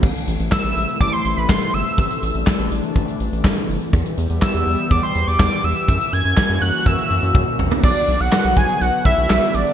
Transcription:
<<
  \new Staff \with { instrumentName = "Analog synth lead" } { \time 4/4 \key a \dorian \tempo 4 = 123 r4 e'''4 d'''16 c'''8 b''16 c'''8 e'''8~ | e'''8 r2. r8 | r4 e'''4 d'''16 c'''8 d'''8. e'''8~ | e'''8 gis'''4 fis'''8 e'''4. r8 |
\key b \dorian d''8. fis''8. gis''8 fis''8 e''4 d''8 | }
  \new Staff \with { instrumentName = "Analog synth pad" } { \time 4/4 \key a \dorian << { e'1 | d'1 | g'1 | fis'1 |
\key b \dorian fis'1 | } \\ { <c e a>1~ | <c e a>1 | <g b>1 | <ais cis'>1 |
<d fis b>1 | } >> }
  \new Staff \with { instrumentName = "Analog synth bass" } { \clef bass \time 4/4 \key a \dorian a,,16 r16 a,,16 a,,16 r16 a,,16 a,,16 r16 a,,16 r16 a,,16 a,,16 a,,16 r16 g,,16 r16 | a,,16 r16 a,,16 a,,16 r16 a,,16 a,,16 r16 a,,16 r16 a,,16 a,,16 a,,16 r16 fis,,16 r16 | e,16 r16 e,16 e,16 r16 e,16 e,16 r16 e,16 r16 e,16 e,16 e,16 r16 e,16 r16 | fis,16 r16 fis,16 fis,16 r16 fis,16 fis,16 r16 fis,16 r16 fis,16 fis,16 fis,16 r16 ais,,16 r16 |
\key b \dorian b,,16 r16 b,,16 b,,16 r16 b,,16 b,,16 r16 b,,16 r16 b,,16 b,,16 b,,16 r16 a,,16 r16 | }
  \new DrumStaff \with { instrumentName = "Drums" } \drummode { \time 4/4 <cymc bd>16 hh16 hh16 hh16 <hc bd sn>16 hh16 hh16 hh16 <hh bd>16 hh16 hh16 hh16 <hc bd sn>16 hh16 hho16 hh16 | <hh bd>16 hh16 hh16 hh16 <hc bd sn>16 hh16 hh16 hh16 <hh bd>16 hh16 hh16 hh16 <hc bd sn>16 hh16 hho16 hh16 | <hh bd>16 hh16 hh16 hh16 <hc bd sn>16 hh16 hho16 hh16 <hh bd>16 hh16 hh16 hh16 <hc bd sn>16 hh16 hho16 hh16 | <hh bd>16 hh16 hh16 hh16 <hc bd sn>16 hh16 hh16 hh16 <hh bd>16 hh16 hh16 hh16 <bd tommh>8 toml16 tomfh16 |
<cymc bd>8 hh16 hh16 <hc sn>8 <hh bd>16 hh16 hh8 <hh bd>16 hh16 <hc sn>8 hh16 hh16 | }
>>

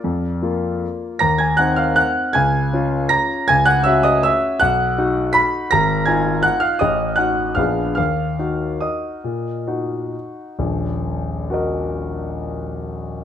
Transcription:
\new Staff \with { instrumentName = "Grand piano" } { \time 3/4 \key ees \minor \tempo 4 = 154 << { <d'' d'''>2~ <d'' d'''>8 r8 | <bes'' bes'''>8 <aes'' aes'''>8 <ges'' ges'''>8 <f'' f'''>8 <ges'' ges'''>4 | <aes'' aes'''>2 <bes'' bes'''>4 | <aes'' aes'''>8 <ges'' ges'''>8 <fes'' fes'''>8 <ees'' ees'''>8 <fes'' fes'''>4 |
<fis'' fis'''>2 <b'' b'''>4 | <bes'' bes'''>4 <aes'' aes'''>4 <ges'' ges'''>8 <f'' f'''>8 | <ees'' ees'''>4 <ges'' ges'''>4 <f'' f'''>4 | <f'' f'''>2 <ees'' ees'''>4~ |
<ees'' ees'''>2 r4 | r2 <ges' bes' ees''>4~ | <ges' bes' ees''>2. | } \\ { f,4 <bes f'>2 | ees,4 <c' ees'>2 | des,4 <des' f'>2 | des,4 <des' ges'>2 |
b,,4 <dis' fis'>2 | aes,,4 <ees' f'>2 | a,,4 <ees' ges'>4 <bes,, ces' d' aes'>4 | ees,4 <ees' ges'>2 |
bes,4 <ees' ges'>2 | <ees,, bes,,>2.~ | <ees,, bes,,>2. | } >> }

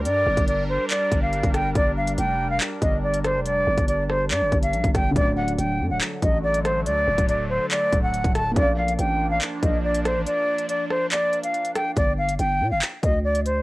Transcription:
<<
  \new Staff \with { instrumentName = "Flute" } { \time 4/4 \key g \minor \tempo 4 = 141 d''4 d''8 c''8 d''8. f''8. g''8 | d''8 f''8 g''8. f''16 r8 ees''8 d''8 c''8 | d''4 d''8 c''8 d''8. f''8. g''8 | d''8 fis''8 g''8. fis''16 r8 ees''8 d''8 c''8 |
d''4 d''8 c''8 d''8. fis''8. a''8 | d''8 f''8 g''8. f''16 r8 ees''8 d''8 c''8 | d''4 d''8 c''8 d''8. f''8. g''8 | d''8 f''8 g''8. f''16 r8 ees''8 d''8 c''8 | }
  \new Staff \with { instrumentName = "Felt piano" } { \time 4/4 \key g \minor r1 | r1 | r1 | <d fis a d''>1~ |
<d fis a d''>1 | <bes bes' d'' f''>1~ | <bes bes' d'' f''>1 | r1 | }
  \new Staff \with { instrumentName = "Analog synth pad" } { \time 4/4 \key g \minor <g d' bes'>1~ | <g d' bes'>1~ | <g d' bes'>1 | <d fis a>1~ |
<d fis a>1 | <f bes d'>1~ | <f bes d'>1 | r1 | }
  \new Staff \with { instrumentName = "808-style bass" } { \clef bass \time 4/4 \key g \minor g,8 g,,16 g,,4 r8. g,,8. g,,8. | g,,4 f,,4 r8 g,,4~ g,,16 f,,16~ | f,,8 g,,16 g,,4~ g,,16 g,16 g,,16 g,,8 bes,,16 g,,16 g,,8 | d,,4 d,,8 fis,16 d,,16 r8 a,,4. |
d,8 d,,16 d,,4 r8. d,,8. d,,8. | bes,,4 a,,4 r8 bes,,4~ bes,,16 a,,16 | r1 | g,,4 g,,8 bes,16 g,,16 r8 d,4. | }
  \new DrumStaff \with { instrumentName = "Drums" } \drummode { \time 4/4 hh8. <hh bd>16 hh4 <hc hh>8 <hh bd>8 hh16 <hh bd>16 <hh ss>8 | <hh bd>8. hh16 hh4 <hc hh>8 <hh bd>8 r16 hh16 <hh ss>8 | hh8. <hh bd>16 hh8 ss8 <hc hh>8 <hh bd>16 hh16 hh16 <hh bd>16 <hh bd ss>8 | <hh bd>8. hh16 hh4 <hc hh>8 <hh bd>8 r16 hh16 <hh ss>8 |
hh8. <hh bd>16 hh4 <hc hh>8 <hh bd>8 hh16 <hh bd>16 <hh ss>8 | <hh bd>8. hh16 hh4 <hc hh>8 <hh bd>8 r16 hh16 <hh ss>8 | hh8. hh16 hh8 ss8 <hc hh>8 hh16 hh16 hh16 hh16 <hh ss>8 | <hh bd>8. hh16 hh4 <hc hh>8 <hh bd>8 r16 hh16 hh8 | }
>>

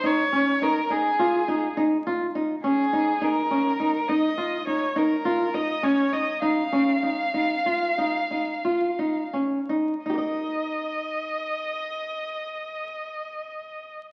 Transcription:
<<
  \new Staff \with { instrumentName = "Violin" } { \time 11/8 \key des \lydian \tempo 4 = 100 des''4 bes'8 aes'4. r4. aes'4 | bes'4. ees''4 des''8 bes'4 ees''8 des''8 ees''8 | f''1~ f''8 r4 | ees''1~ ees''4. | }
  \new Staff \with { instrumentName = "Nylon-string guitar" } { \time 11/8 \key des \lydian ees'8 des'8 ees'8 ees'8 f'8 ees'8 ees'8 f'8 ees'8 des'8 ees'8 | ees'8 des'8 ees'8 ees'8 f'8 ees'8 ees'8 f'8 ees'8 des'8 ees'8 | ees'8 des'8 ees'8 ees'8 f'8 ees'8 ees'8 f'8 ees'8 des'8 ees'8 | <ees' g' bes' ees''>1~ <ees' g' bes' ees''>4. | }
>>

